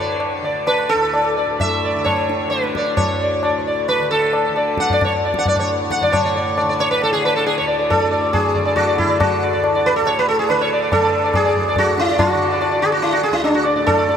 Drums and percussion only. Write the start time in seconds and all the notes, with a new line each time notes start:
0.20 tabla na
0.67 tabla na
1.13 tabla na
1.60 tabla na, tabla ge
2.06 tabla na, tabla ge
2.29 tabla te
2.53 tabla te
2.64 tabla te
2.75 tabla ke
2.87 tabla te
2.97 tabla na, tabla ge
3.43 tabla na
3.88 tabla na
4.33 tabla na
4.56 tabla na
4.77 tabla ke
4.90 tabla tin, tabla ge
5.01 tabla na, tabla ge
5.34 tabla ke
5.46 tabla tin, tabla ge
5.56 tabla na, tabla ge
5.91 tabla ke
6.02 tabla tin, tabla ge
6.13 tabla na, tabla ge
6.58 tabla na
6.79 tabla na
7.02 tabla na
7.24 tabla na
7.47 tabla na
7.91 tabla na, tabla ge
8.34 tabla na, tabla ge
8.55 tabla ge
8.77 tabla na, tabla ge
8.99 tabla ge
9.21 tabla na, tabla ge
9.64 tabla na
10.06 tabla na
10.49 tabla na
10.92 tabla na, tabla ge
11.34 tabla na, tabla ge
11.56 tabla ge
11.76 tabla na, tabla ge
11.98 tabla te
12.19 tabla na, tabla ge
12.62 tabla na
13.03 tabla na
13.45 tabla na
13.88 tabla na, tabla ge
14.09 tabla te